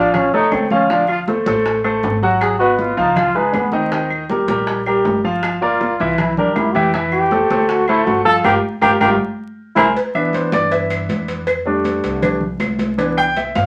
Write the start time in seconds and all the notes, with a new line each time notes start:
Already playing: A1 F3 D4 F4 F5
0.14 C#4, high bongo, high conga, low conga, claves
0.33 C2 A3 D#4 A4 C#5, high bongo, high conga
0.52 D2 C4, high bongo, low bongo, high conga, claves
0.71 F3 C#4 F4 F5, high conga
0.90 F3 D4 F4 F5, high bongo, high conga
1.08 F4, high bongo, high conga, claves
1.28 A3 A4 C5, high bongo, high conga
1.46 A1 A3 A4 C5, high bongo, high conga
1.65 high bongo, high conga
1.84 A3 A4 C5, high bongo, high conga, claves
2.03 G#1, high bongo, low bongo, high conga
2.23 F#3 F#4 F#5, high conga
2.41 G#4, high bongo, high conga, claves
2.59 B3 F#4 B4 D#5, high bongo, high conga
2.78 F4, high bongo, high conga
2.97 C#2 F3 D#4 F4 F5, high bongo, high conga
3.16 F4, high bongo, high conga, low conga, claves
3.35 C#2 G#3 D#4 G#4 B4, high bongo, high conga
3.54 D#2 B3, high bongo, low bongo, high conga, claves
3.72 D#3 C4 D#4 D#5, high conga
3.92 D#3 D#4 D#5, high bongo, high conga
4.10 high bongo, high conga, claves
4.29 G3 G4 A#4, high bongo, high conga
4.48 A#1 G3 G4 A#4, high bongo, high conga
4.67 high bongo, high conga
4.86 G3 G4 A#4, high bongo, high conga, claves
5.05 G1, high bongo, low bongo, high conga
5.24 F3 F4 F5, high conga
5.43 high bongo, high conga, claves
5.62 A#3 F4 A#4 D5, high bongo, high conga
5.81 high bongo, high conga
6.00 C2 E3 E4 E5, high bongo, high conga
6.18 E4, high bongo, high conga, low conga, claves
6.37 E2 G3 D4 G4 A#4, high bongo, high conga, low conga
6.56 F2 E4, high bongo, low bongo, high conga, claves
6.74 E3 E4 G4 E5, high conga
6.94 E3 E4 E5, high bongo, high conga
7.12 G4, high bongo, high conga, claves
7.31 A3 A4 C5, high bongo, high conga
7.50 D2 A3 A4 C5, high conga
7.69 F#4, high bongo, high conga
7.88 A3 E4 A4 C5, high bongo, high conga, claves
8.06 G1 F#4, high bongo, low bongo, high conga
8.25 F3 F4 A4 F5, high conga
8.44 G1 F4 G4 A#4, low bongo, high conga, claves
8.81 G1 F4 G4 A#4, low bongo, high conga, claves
9.01 G1 F4 G4 A#4, low bongo, high conga, claves
9.76 C2 E4 G#4 A#4 C5, low bongo, high conga, claves
9.96 cowbell, high conga
10.15 E3 B3 D4 E5, high conga, claves
10.33 C5, cowbell, high conga
10.52 G2 D5, cowbell, high conga
10.71 E5, cowbell, high conga
10.90 cowbell, high conga, claves
11.09 F2, cowbell, high conga
11.28 cowbell, high conga
11.47 cowbell, high conga, claves
11.65 G3 A3 D4, high conga
11.84 cowbell, high conga
12.03 C2, cowbell, high conga
12.22 G3 A3 D4, cowbell, high conga, low conga, claves
12.41 high conga, low conga
12.60 C2, cowbell, high conga, claves
12.79 cowbell, high conga
12.98 E3 B3 D4, cowbell, high conga
13.17 G5, high conga, claves
13.36 E5, cowbell, high conga
13.55 G2 F5, cowbell, high conga